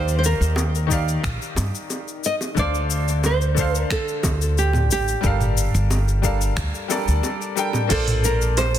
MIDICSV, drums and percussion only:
0, 0, Header, 1, 2, 480
1, 0, Start_track
1, 0, Tempo, 666667
1, 1850, Time_signature, 4, 2, 24, 8
1, 6327, End_track
2, 0, Start_track
2, 0, Title_t, "Drums"
2, 60, Note_on_c, 9, 69, 20
2, 132, Note_off_c, 9, 69, 0
2, 175, Note_on_c, 9, 69, 68
2, 247, Note_off_c, 9, 69, 0
2, 303, Note_on_c, 9, 69, 29
2, 375, Note_off_c, 9, 69, 0
2, 403, Note_on_c, 9, 60, 88
2, 419, Note_on_c, 9, 69, 39
2, 475, Note_off_c, 9, 60, 0
2, 491, Note_off_c, 9, 69, 0
2, 542, Note_on_c, 9, 69, 19
2, 614, Note_off_c, 9, 69, 0
2, 649, Note_on_c, 9, 36, 61
2, 656, Note_on_c, 9, 69, 72
2, 721, Note_off_c, 9, 36, 0
2, 728, Note_off_c, 9, 69, 0
2, 781, Note_on_c, 9, 69, 32
2, 853, Note_off_c, 9, 69, 0
2, 890, Note_on_c, 9, 36, 106
2, 894, Note_on_c, 9, 26, 71
2, 898, Note_on_c, 9, 69, 42
2, 962, Note_off_c, 9, 36, 0
2, 966, Note_off_c, 9, 26, 0
2, 970, Note_off_c, 9, 69, 0
2, 1022, Note_on_c, 9, 69, 19
2, 1094, Note_off_c, 9, 69, 0
2, 1126, Note_on_c, 9, 60, 79
2, 1136, Note_on_c, 9, 69, 74
2, 1198, Note_off_c, 9, 60, 0
2, 1208, Note_off_c, 9, 69, 0
2, 1260, Note_on_c, 9, 69, 32
2, 1332, Note_off_c, 9, 69, 0
2, 1369, Note_on_c, 9, 60, 57
2, 1371, Note_on_c, 9, 69, 39
2, 1441, Note_off_c, 9, 60, 0
2, 1443, Note_off_c, 9, 69, 0
2, 1499, Note_on_c, 9, 69, 20
2, 1571, Note_off_c, 9, 69, 0
2, 1614, Note_on_c, 9, 69, 68
2, 1686, Note_off_c, 9, 69, 0
2, 1734, Note_on_c, 9, 60, 57
2, 1740, Note_on_c, 9, 69, 29
2, 1806, Note_off_c, 9, 60, 0
2, 1812, Note_off_c, 9, 69, 0
2, 1851, Note_on_c, 9, 36, 104
2, 1854, Note_on_c, 9, 69, 40
2, 1923, Note_off_c, 9, 36, 0
2, 1926, Note_off_c, 9, 69, 0
2, 1977, Note_on_c, 9, 69, 22
2, 2049, Note_off_c, 9, 69, 0
2, 2092, Note_on_c, 9, 69, 70
2, 2164, Note_off_c, 9, 69, 0
2, 2220, Note_on_c, 9, 69, 28
2, 2292, Note_off_c, 9, 69, 0
2, 2329, Note_on_c, 9, 60, 79
2, 2334, Note_on_c, 9, 69, 39
2, 2401, Note_off_c, 9, 60, 0
2, 2406, Note_off_c, 9, 69, 0
2, 2458, Note_on_c, 9, 69, 19
2, 2530, Note_off_c, 9, 69, 0
2, 2572, Note_on_c, 9, 36, 60
2, 2573, Note_on_c, 9, 69, 72
2, 2644, Note_off_c, 9, 36, 0
2, 2645, Note_off_c, 9, 69, 0
2, 2701, Note_on_c, 9, 69, 31
2, 2773, Note_off_c, 9, 69, 0
2, 2811, Note_on_c, 9, 26, 77
2, 2811, Note_on_c, 9, 36, 104
2, 2816, Note_on_c, 9, 69, 42
2, 2883, Note_off_c, 9, 26, 0
2, 2883, Note_off_c, 9, 36, 0
2, 2888, Note_off_c, 9, 69, 0
2, 2940, Note_on_c, 9, 69, 18
2, 3012, Note_off_c, 9, 69, 0
2, 3048, Note_on_c, 9, 60, 92
2, 3051, Note_on_c, 9, 36, 92
2, 3054, Note_on_c, 9, 69, 70
2, 3120, Note_off_c, 9, 60, 0
2, 3123, Note_off_c, 9, 36, 0
2, 3126, Note_off_c, 9, 69, 0
2, 3180, Note_on_c, 9, 69, 30
2, 3252, Note_off_c, 9, 69, 0
2, 3297, Note_on_c, 9, 69, 39
2, 3369, Note_off_c, 9, 69, 0
2, 3409, Note_on_c, 9, 60, 54
2, 3416, Note_on_c, 9, 45, 76
2, 3421, Note_on_c, 9, 69, 20
2, 3481, Note_off_c, 9, 60, 0
2, 3488, Note_off_c, 9, 45, 0
2, 3493, Note_off_c, 9, 69, 0
2, 3537, Note_on_c, 9, 69, 71
2, 3609, Note_off_c, 9, 69, 0
2, 3659, Note_on_c, 9, 69, 30
2, 3731, Note_off_c, 9, 69, 0
2, 3771, Note_on_c, 9, 36, 117
2, 3771, Note_on_c, 9, 69, 42
2, 3843, Note_off_c, 9, 36, 0
2, 3843, Note_off_c, 9, 69, 0
2, 3891, Note_on_c, 9, 45, 65
2, 3896, Note_on_c, 9, 69, 21
2, 3963, Note_off_c, 9, 45, 0
2, 3968, Note_off_c, 9, 69, 0
2, 4015, Note_on_c, 9, 69, 68
2, 4087, Note_off_c, 9, 69, 0
2, 4140, Note_on_c, 9, 69, 29
2, 4212, Note_off_c, 9, 69, 0
2, 4252, Note_on_c, 9, 60, 82
2, 4257, Note_on_c, 9, 69, 38
2, 4324, Note_off_c, 9, 60, 0
2, 4329, Note_off_c, 9, 69, 0
2, 4379, Note_on_c, 9, 69, 20
2, 4451, Note_off_c, 9, 69, 0
2, 4490, Note_on_c, 9, 36, 59
2, 4493, Note_on_c, 9, 69, 73
2, 4562, Note_off_c, 9, 36, 0
2, 4565, Note_off_c, 9, 69, 0
2, 4618, Note_on_c, 9, 69, 34
2, 4690, Note_off_c, 9, 69, 0
2, 4728, Note_on_c, 9, 26, 81
2, 4730, Note_on_c, 9, 36, 113
2, 4732, Note_on_c, 9, 69, 44
2, 4800, Note_off_c, 9, 26, 0
2, 4802, Note_off_c, 9, 36, 0
2, 4804, Note_off_c, 9, 69, 0
2, 4857, Note_on_c, 9, 69, 18
2, 4929, Note_off_c, 9, 69, 0
2, 4972, Note_on_c, 9, 60, 84
2, 4972, Note_on_c, 9, 69, 69
2, 5044, Note_off_c, 9, 60, 0
2, 5044, Note_off_c, 9, 69, 0
2, 5099, Note_on_c, 9, 69, 31
2, 5171, Note_off_c, 9, 69, 0
2, 5208, Note_on_c, 9, 60, 64
2, 5213, Note_on_c, 9, 69, 37
2, 5280, Note_off_c, 9, 60, 0
2, 5285, Note_off_c, 9, 69, 0
2, 5339, Note_on_c, 9, 69, 21
2, 5411, Note_off_c, 9, 69, 0
2, 5453, Note_on_c, 9, 69, 72
2, 5525, Note_off_c, 9, 69, 0
2, 5568, Note_on_c, 9, 60, 66
2, 5573, Note_on_c, 9, 45, 55
2, 5578, Note_on_c, 9, 69, 29
2, 5640, Note_off_c, 9, 60, 0
2, 5645, Note_off_c, 9, 45, 0
2, 5650, Note_off_c, 9, 69, 0
2, 5688, Note_on_c, 9, 46, 73
2, 5688, Note_on_c, 9, 49, 102
2, 5691, Note_on_c, 9, 36, 118
2, 5693, Note_on_c, 9, 69, 43
2, 5760, Note_off_c, 9, 46, 0
2, 5760, Note_off_c, 9, 49, 0
2, 5763, Note_off_c, 9, 36, 0
2, 5765, Note_off_c, 9, 69, 0
2, 5814, Note_on_c, 9, 45, 77
2, 5814, Note_on_c, 9, 46, 47
2, 5819, Note_on_c, 9, 69, 22
2, 5886, Note_off_c, 9, 45, 0
2, 5886, Note_off_c, 9, 46, 0
2, 5891, Note_off_c, 9, 69, 0
2, 5936, Note_on_c, 9, 69, 81
2, 6008, Note_off_c, 9, 69, 0
2, 6060, Note_on_c, 9, 69, 30
2, 6132, Note_off_c, 9, 69, 0
2, 6171, Note_on_c, 9, 46, 61
2, 6174, Note_on_c, 9, 60, 94
2, 6175, Note_on_c, 9, 69, 44
2, 6243, Note_off_c, 9, 46, 0
2, 6246, Note_off_c, 9, 60, 0
2, 6247, Note_off_c, 9, 69, 0
2, 6297, Note_on_c, 9, 46, 45
2, 6301, Note_on_c, 9, 69, 22
2, 6327, Note_off_c, 9, 46, 0
2, 6327, Note_off_c, 9, 69, 0
2, 6327, End_track
0, 0, End_of_file